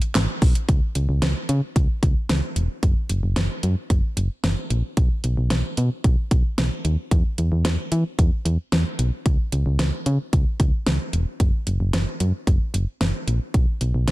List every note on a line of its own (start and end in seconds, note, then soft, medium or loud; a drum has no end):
0.02 closed hi-hat medium
0.15 0.27 G#1 loud
0.15 snare loud
0.15 clap medium
0.15 closed hi-hat medium
0.42 0.54 B1 medium
0.42 kick medium
0.42 open hi-hat medium
0.55 closed hi-hat medium
0.69 0.81 C#2 loud
0.69 kick loud
0.69 closed hi-hat medium
0.95 1.07 C#2 medium
0.95 closed hi-hat medium
1.09 1.21 C#2 medium
1.22 1.34 C#2 loud
1.22 snare loud
1.22 closed hi-hat medium
1.49 1.61 C#3 loud
1.49 closed hi-hat medium
1.76 1.88 C#2 loud
1.76 kick medium
1.76 closed hi-hat medium
2.03 2.15 C#2 medium
2.03 kick medium
2.03 closed hi-hat medium
2.29 2.41 C#2 loud
2.29 snare loud
2.29 closed hi-hat medium
2.56 2.68 E1 medium
2.56 closed hi-hat medium
2.83 2.95 F#1 loud
2.83 kick loud
2.83 closed hi-hat medium
3.09 3.22 F#1 loud
3.09 closed hi-hat medium
3.23 3.35 F#1 medium
3.36 3.49 F#1 loud
3.36 snare loud
3.36 closed hi-hat medium
3.63 3.75 F#2 medium
3.63 closed hi-hat medium
3.90 4.02 F#1 loud
3.90 kick medium
3.90 closed hi-hat medium
4.17 4.29 F#1 loud
4.17 closed hi-hat medium
4.44 4.56 F#1 medium
4.44 snare loud
4.44 closed hi-hat medium
4.70 4.82 A#1 medium
4.70 closed hi-hat medium
4.97 5.09 B1 loud
4.97 kick loud
4.97 closed hi-hat medium
5.24 5.36 B1 medium
5.24 closed hi-hat medium
5.37 5.49 B1 medium
5.50 5.63 B1 loud
5.50 snare loud
5.50 closed hi-hat medium
5.77 5.90 B2 loud
5.77 closed hi-hat medium
6.04 6.16 B1 loud
6.04 kick medium
6.04 closed hi-hat medium
6.31 6.43 B1 medium
6.31 kick medium
6.31 closed hi-hat medium
6.58 6.70 B1 loud
6.58 snare loud
6.58 closed hi-hat medium
6.85 6.97 D#2 medium
6.85 closed hi-hat medium
7.11 7.23 E2 loud
7.11 kick loud
7.11 closed hi-hat medium
7.38 7.50 E2 medium
7.38 closed hi-hat medium
7.52 7.64 E2 medium
7.65 7.77 E2 loud
7.65 snare loud
7.65 closed hi-hat medium
7.92 8.04 E3 medium
7.92 closed hi-hat medium
8.19 8.31 E2 loud
8.19 kick medium
8.19 closed hi-hat medium
8.45 8.57 E2 loud
8.45 closed hi-hat medium
8.72 8.84 E2 loud
8.72 snare loud
8.72 closed hi-hat medium
8.99 9.11 B1 medium
8.99 closed hi-hat medium
9.26 9.38 C#2 loud
9.26 kick loud
9.26 closed hi-hat medium
9.52 9.65 C#2 loud
9.52 closed hi-hat medium
9.66 9.78 C#2 loud
9.79 9.91 C#2 loud
9.79 snare loud
9.79 closed hi-hat medium
10.06 10.18 C#3 loud
10.06 closed hi-hat medium
10.33 10.45 C#2 loud
10.33 kick medium
10.33 closed hi-hat medium
10.60 10.72 C#2 medium
10.60 kick medium
10.60 closed hi-hat medium
10.86 10.99 C#2 loud
10.86 snare loud
10.86 closed hi-hat medium
11.13 11.25 E1 medium
11.13 closed hi-hat medium
11.40 11.52 F#1 loud
11.40 kick loud
11.40 closed hi-hat medium
11.67 11.79 F#1 loud
11.67 closed hi-hat medium
11.80 11.92 F#1 loud
11.93 12.06 F#1 loud
11.93 snare loud
11.93 closed hi-hat medium
12.20 12.32 F#2 medium
12.20 closed hi-hat medium
12.47 12.59 F#1 loud
12.47 kick medium
12.47 closed hi-hat medium
12.74 12.86 F#1 loud
12.74 closed hi-hat medium
13.01 13.13 F#1 loud
13.01 snare loud
13.01 closed hi-hat medium
13.27 13.40 A#1 medium
13.27 closed hi-hat medium
13.54 13.66 B1 loud
13.54 kick loud
13.54 closed hi-hat medium
13.81 13.93 B1 loud
13.81 closed hi-hat medium
13.94 14.06 B1 loud
14.08 14.11 B1 medium
14.08 snare loud
14.08 closed hi-hat medium